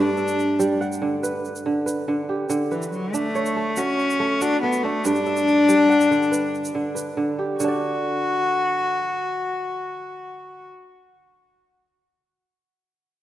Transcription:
Already playing: kora G2 A3 D4, cello D4
0.17 kora E5, shaker
0.28 shaker
0.39 shaker
0.59 kora G3, shaker
0.81 kora F#5, shaker
0.92 shaker
1.02 kora D3
1.23 kora B4, shaker
1.45 shaker
1.56 shaker
1.66 kora D3
1.86 kora B4, shaker
2.08 kora D3
2.29 kora G4
2.49 kora D3, shaker
2.71 cello E3, kora B4, shaker
2.82 shaker
2.92 cello F#3, shaker
3.14 cello A3, kora D4, shaker
3.35 kora C#5, shaker
3.46 shaker
3.56 kora A3
3.76 cello C#4, kora F#4, shaker
3.99 shaker
4.10 shaker
4.20 kora A3
4.41 cello D4, kora F#4, shaker
4.63 kora A3, cello B3
4.73 shaker
4.83 cello A3, kora D4
5.05 kora G2, cello D4, shaker
5.15 shaker
5.26 kora E5, shaker
5.37 shaker
5.48 shaker
5.69 kora G3, shaker
5.89 kora F#5, shaker
6.01 shaker
6.11 kora D3, shaker
6.22 shaker
6.31 kora B4, shaker
6.55 shaker
6.65 shaker
6.75 kora D3
6.95 kora B4, shaker
7.17 kora D3
7.39 kora G4
7.59 kora D3, cello F#4, shaker
7.64 kora D4
7.68 kora D5

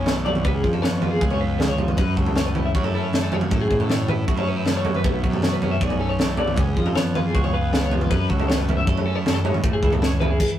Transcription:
Already playing: fingered electric bass B1, clean electric guitar B2 F#3 C#4 G#4 C#5
0.06 clean electric guitar A3, snare, mid tom
0.16 clean electric guitar A4
0.25 clean electric guitar F#3 D5, floor tom
0.35 mid tom
0.45 fingered electric bass C#2, clean electric guitar C#3 B4, kick, floor tom
0.54 clean electric guitar G#4
0.64 fingered electric bass F2, clean electric guitar F3, kick
0.73 clean electric guitar A4, floor tom
0.82 clean electric guitar B3 C#5, snare, mid tom
1.02 clean electric guitar F4 B4, floor tom, mid tom
1.11 clean electric guitar G#4
1.21 fingered electric bass C#2, clean electric guitar G#4, kick
1.31 clean electric guitar C#5, floor tom
1.40 clean electric guitar F4 B4
1.58 clean electric guitar D3 G#4, snare, mid tom
1.69 clean electric guitar C#5
1.78 clean electric guitar F3, floor tom
1.88 clean electric guitar B4, mid tom
1.97 clean electric guitar F#2 B4, fingered electric bass F#2, kick, floor tom
2.17 fingered electric bass C#2, clean electric guitar F#3 A4, kick
2.26 floor tom
2.36 clean electric guitar A3 C#5, snare, mid tom
2.46 clean electric guitar B4
2.55 clean electric guitar E4, floor tom, mid tom
2.66 clean electric guitar E5
2.75 fingered electric bass F#2, clean electric guitar F#4 C#5, kick
2.84 clean electric guitar A4, floor tom
2.95 clean electric guitar E4 A4
3.04 clean electric guitar C#5
3.13 clean electric guitar A3, snare, mid tom
3.24 clean electric guitar A4
3.32 clean electric guitar F#3 C#5, floor tom
3.41 mid tom
3.51 clean electric guitar F#2 A4, fingered electric bass A2, kick, floor tom
3.62 clean electric guitar G#4
3.71 fingered electric bass A2, clean electric guitar F#3, kick
3.80 clean electric guitar A4, floor tom
3.90 clean electric guitar A3 C#5, snare, mid tom
4.08 clean electric guitar E4 B4, floor tom, mid tom
4.19 clean electric guitar A4
4.28 fingered electric bass F#2, clean electric guitar F#4, kick
4.37 clean electric guitar A4 C#5, floor tom
4.48 clean electric guitar C#4 B4
4.56 clean electric guitar E4
4.66 clean electric guitar A3 A4, snare, mid tom
4.77 clean electric guitar C#5
4.84 clean electric guitar F#3, floor tom
4.95 clean electric guitar B4, mid tom
5.04 fingered electric bass B1, clean electric guitar B2 B4, kick, floor tom
5.23 fingered electric bass F#2, clean electric guitar F#3 A4, kick
5.33 floor tom
5.42 clean electric guitar A3 C#5, snare, mid tom
5.53 clean electric guitar B4
5.62 clean electric guitar C#4, floor tom, mid tom
5.71 clean electric guitar E5
5.80 fingered electric bass B1, clean electric guitar G#4 D5, kick
5.90 floor tom
6.00 clean electric guitar C#4 A4
6.09 clean electric guitar C#5
6.19 clean electric guitar A3, snare, mid tom
6.28 clean electric guitar A4
6.37 clean electric guitar F#3 D5, floor tom
6.48 mid tom
6.57 fingered electric bass C#2, clean electric guitar C#3 B4, kick, floor tom
6.67 clean electric guitar G#4
6.77 fingered electric bass F2, clean electric guitar F3, kick
6.86 clean electric guitar A4, floor tom
6.95 clean electric guitar B3 C#5, snare, mid tom
7.15 clean electric guitar F4 B4, floor tom, mid tom
7.25 clean electric guitar G#4
7.35 fingered electric bass C#2, clean electric guitar F#4, kick
7.44 clean electric guitar G#4 C#5, floor tom
7.54 clean electric guitar F4 B4
7.73 clean electric guitar B3 G#4, snare, mid tom
7.82 clean electric guitar C#5
7.92 clean electric guitar F3, floor tom
8.01 clean electric guitar B4, mid tom
8.11 fingered electric bass F#2, clean electric guitar F#2 B4, kick, floor tom
8.29 fingered electric bass C#2, clean electric guitar F#3 A4, kick
8.40 floor tom
8.48 clean electric guitar A3 C#5, snare, mid tom
8.58 clean electric guitar B4
8.69 clean electric guitar E4, floor tom, mid tom
8.77 clean electric guitar E5
8.86 fingered electric bass F#2, clean electric guitar A4 C#5, kick
8.98 floor tom
9.06 clean electric guitar C#4 A4
9.15 clean electric guitar E4 C#5
9.26 clean electric guitar F#2, snare, mid tom
9.35 clean electric guitar A4
9.44 clean electric guitar G#2 C#5, floor tom
9.54 mid tom
9.63 fingered electric bass A1, clean electric guitar A2 A4, kick, floor tom
9.73 clean electric guitar G#4
9.83 fingered electric bass C#2, clean electric guitar E3, kick
9.92 clean electric guitar A4, floor tom
10.02 clean electric guitar C#4 C#5, snare, mid tom
10.20 clean electric guitar E4 B4, floor tom, mid tom
10.30 clean electric guitar G#4
10.40 kick, crash

